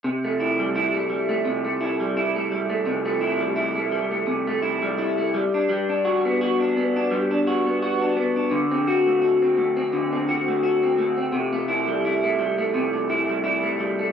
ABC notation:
X:1
M:4/4
L:1/16
Q:"Swing 16ths" 1/4=85
K:Clyd
V:1 name="Clean electric guitar"
C, A, E G, E A, G, A, C, A, E G, E A, G, A, | C, A, E G, E A, G, A, C, A, E G, E A, G, D | G, D F B, F D B, D G, D F B, F D B, D | D, C F A, F C A, C D, C F A, F C A, C |
C, A, E G, E A, G, A, C, A, E G, E A, G, A, |]